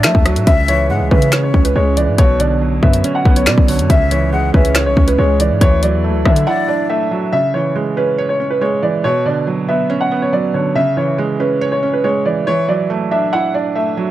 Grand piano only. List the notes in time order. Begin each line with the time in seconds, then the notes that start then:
0.04 E5
0.47 E5
0.68 C#5
1.11 B4
1.43 C#5
1.65 B4
1.76 C#5
1.97 D5
2.18 C#5
2.40 D5
2.83 E5
3.15 F#5
3.36 C#5
3.47 D5
3.68 C#5
3.90 E5
4.11 C#5
4.54 B4
4.86 C#5
5.08 B4
5.19 C#5
5.40 D5
5.61 C#5
5.83 D5
6.25 E5
6.47 F#5
6.68 D5
6.90 E5
7.33 E5
7.54 C#5
7.97 B4
8.29 C#5
8.50 B4
8.61 C#5
8.83 D5
9.04 C#5
9.26 D5
9.69 E5
10.01 F#5
10.22 C#5
10.33 D5
10.54 C#5
10.76 E5
10.97 C#5
11.40 B4
11.72 C#5
11.93 B4
12.04 C#5
12.25 D5
12.47 C#5
12.68 D5
13.11 E5
13.33 F#5
13.54 D5
13.75 E5